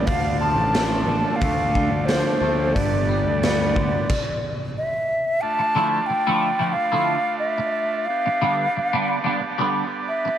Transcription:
0.06 0.54 D2 medium
0.06 1.07 D3 medium
0.06 2.73 A3 medium
0.06 2.72 D4 medium
0.06 2.73 F4 medium
0.06 2.72 D5 medium
0.06 0.40 F5 medium
0.06 kick medium
0.06 open hi-hat soft
0.40 2.07 F3 medium
0.40 1.04 A5 medium
0.55 1.03 A1 medium
0.75 1.41 A3 medium
0.75 snare loud
0.75 open hi-hat soft
1.06 1.23 A1 medium
1.06 1.74 D3 medium
1.06 1.38 A5 medium
1.36 2.07 F5 medium
1.41 1.88 D2 medium
1.41 2.41 A3 medium
1.41 kick loud
1.41 open hi-hat soft
1.75 2.76 D3 medium
1.75 kick medium
1.91 2.23 D2 medium
2.05 2.75 F3 medium
2.05 2.75 C5 medium
2.05 snare medium
2.05 open hi-hat soft
2.41 2.73 D2 medium
2.41 2.75 A3 medium
2.74 3.23 G1 medium
2.74 4.10 G2 medium
2.74 4.08 B3 medium
2.74 4.08 D4 medium
2.74 4.08 G4 medium
2.74 4.53 D5 medium
2.74 4.08 D5 medium
2.74 kick medium
2.74 open hi-hat soft
3.09 4.09 G3 medium
3.25 3.72 D2 medium
3.43 4.10 B3 medium
3.43 snare medium
3.43 open hi-hat soft
3.76 3.91 D2 medium
3.76 4.09 D3 medium
3.76 kick medium
4.09 kick loud
4.09 crash medium
4.78 5.43 E5 medium
5.41 8.08 A3 medium
5.41 8.07 D4 medium
5.41 8.07 F4 medium
5.41 10.38 D5 medium
5.41 6.08 A5 loud
5.59 muted clean electric guitar stroke soft
5.75 5.98 D3 medium
5.75 5.98 F3 medium
5.75 5.98 A3 medium
5.75 5.98 E4 medium
6.06 6.74 G5 medium
6.06 muted clean electric guitar stroke soft
6.27 6.49 D3 medium
6.27 6.49 F3 medium
6.27 6.49 A3 medium
6.27 6.48 E4 medium
6.59 6.74 D3 medium
6.59 6.74 F3 medium
6.59 6.75 A3 medium
6.59 6.75 E4 medium
6.73 7.38 F5 medium
6.73 muted clean electric guitar stroke soft
6.92 7.15 D3 medium
6.92 7.15 F3 medium
6.92 7.15 A3 medium
6.92 7.14 E4 medium
7.39 8.07 E5 medium
7.58 muted clean electric guitar stroke soft
8.06 10.38 B3 medium
8.06 9.42 F5 medium
8.10 10.38 D4 medium
8.10 10.38 G4 medium
8.26 muted clean electric guitar stroke soft
8.42 8.64 D3 medium
8.42 8.65 G3 medium
8.42 8.65 B3 medium
8.42 8.65 D4 medium
8.77 muted clean electric guitar stroke soft
8.93 9.16 D3 medium
8.93 9.15 G3 medium
8.93 9.15 B3 medium
8.93 9.15 D4 medium
9.24 9.41 D3 medium
9.24 9.41 G3 medium
9.24 9.41 B3 medium
9.24 9.42 D4 medium
9.42 muted clean electric guitar stroke soft
9.58 9.82 D3 medium
9.58 9.81 G3 medium
9.58 9.81 B3 medium
9.58 9.81 D4 medium
10.08 10.38 E5 medium
10.25 muted clean electric guitar stroke soft

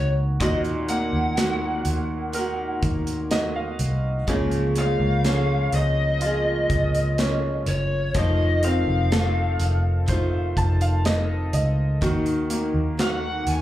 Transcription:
0.00 0.37 C#2 medium
0.00 0.37 D#3 medium
0.00 0.39 D#3 medium
0.00 0.41 A#3 medium
0.00 0.40 D#4 medium
0.00 0.41 F#4 medium
0.00 1.34 F#4 medium
0.00 0.37 A#4 medium
0.40 1.09 D#2 medium
0.40 4.24 A#2 medium
0.40 1.36 D#3 medium
0.40 1.37 A#3 medium
0.40 1.38 D#4 medium
0.40 1.38 F#4 medium
0.40 0.54 D#5 medium
0.40 kick loud
0.40 closed hi-hat medium
0.64 closed hi-hat soft
0.88 2.79 A#3 soft
0.88 2.79 F#5 medium
0.88 closed hi-hat medium
1.13 1.82 D#2 medium
1.37 2.31 D#3 medium
1.37 2.35 A#3 medium
1.37 2.35 D#4 medium
1.37 3.27 F#4 medium
1.37 2.35 F#4 medium
1.37 snare loud
1.37 closed hi-hat medium
1.85 2.79 D#2 medium
1.85 closed hi-hat medium
2.32 4.27 D#3 medium
2.32 4.28 A#3 medium
2.32 4.24 A#4 medium
2.32 closed hi-hat medium
2.37 4.28 D#4 medium
2.37 4.28 F#4 medium
2.83 3.76 D#2 medium
2.83 kick medium
2.83 closed hi-hat medium
3.07 closed hi-hat medium
3.31 4.25 F#4 soft
3.31 3.54 D#5 medium
3.31 snare medium
3.31 closed hi-hat medium
3.56 4.24 F5 medium
3.79 4.24 C2 medium
3.79 closed hi-hat medium
4.27 4.96 C#2 loud
4.27 5.24 C#3 medium
4.27 8.11 C#3 medium
4.27 5.24 F3 medium
4.27 5.24 A#3 medium
4.27 5.26 F4 loud
4.27 5.25 G#4 medium
4.27 kick medium
4.27 closed hi-hat medium
4.51 closed hi-hat soft
4.76 6.66 G#3 soft
4.76 5.75 F5 loud
4.76 closed hi-hat medium
5.00 5.69 C#2 medium
5.24 6.19 F3 medium
5.24 6.21 A#3 medium
5.24 7.15 C#4 medium
5.24 6.24 F4 medium
5.24 6.23 G#4 medium
5.24 snare medium
5.24 closed hi-hat medium
5.72 6.66 C#2 medium
5.72 7.73 D#5 medium
5.72 closed hi-hat medium
6.20 8.15 F3 medium
6.20 8.15 A#3 medium
6.20 8.11 F4 soft
6.20 closed hi-hat medium
6.24 8.15 F4 medium
6.24 8.16 G#4 medium
6.70 7.63 C#2 medium
6.70 kick medium
6.70 closed hi-hat medium
6.95 closed hi-hat medium
7.18 8.12 C#4 soft
7.18 snare loud
7.18 closed hi-hat medium
7.66 8.11 F#1 medium
7.66 8.13 C#5 medium
7.66 closed hi-hat medium
8.14 8.83 F1 medium
8.14 9.11 F2 medium
8.14 9.12 C3 medium
8.14 9.10 D#3 medium
8.14 11.98 F3 medium
8.14 9.10 A3 medium
8.14 9.12 D#4 medium
8.14 9.12 F4 medium
8.14 8.64 D#5 medium
8.14 kick loud
8.14 closed hi-hat medium
8.63 10.53 C4 soft
8.63 10.54 F5 medium
8.63 closed hi-hat medium
8.88 9.56 F1 medium
9.11 10.06 D#3 medium
9.11 10.07 A3 medium
9.11 10.10 D#4 medium
9.11 10.09 F4 medium
9.11 11.01 A4 soft
9.11 snare loud
9.11 closed hi-hat medium
9.60 10.53 F1 medium
9.60 closed hi-hat medium
10.06 12.01 D#3 medium
10.06 12.01 A3 medium
10.06 11.98 C5 soft
10.06 kick medium
10.06 closed hi-hat medium
10.11 12.02 D#4 medium
10.11 12.03 F4 medium
10.57 11.50 F1 medium
10.57 10.80 A5 medium
10.57 kick medium
10.57 closed hi-hat medium
10.81 11.04 F5 medium
10.81 closed hi-hat medium
11.05 12.00 A4 soft
11.05 11.50 D#5 medium
11.05 snare medium
11.05 closed hi-hat medium
11.53 11.98 C#2 medium
11.53 11.99 D#5 medium
11.53 closed hi-hat medium
12.01 12.71 D#2 medium
12.01 12.96 D#3 medium
12.01 13.62 D#3 medium
12.01 12.98 A#3 medium
12.01 12.98 D#4 medium
12.01 12.99 F#4 medium
12.01 kick medium
12.01 closed hi-hat medium
12.26 closed hi-hat soft
12.50 13.62 A#3 soft
12.50 closed hi-hat medium
12.74 13.43 D#2 medium
12.97 13.62 D#3 medium
12.97 13.62 A#3 soft
12.97 13.62 D#4 medium
12.97 13.62 F#4 soft
12.97 13.62 F#4 medium
12.97 13.50 F#5 medium
12.97 snare medium
12.97 closed hi-hat medium
13.47 13.62 D#2 medium
13.47 13.62 G#5 medium
13.47 closed hi-hat medium

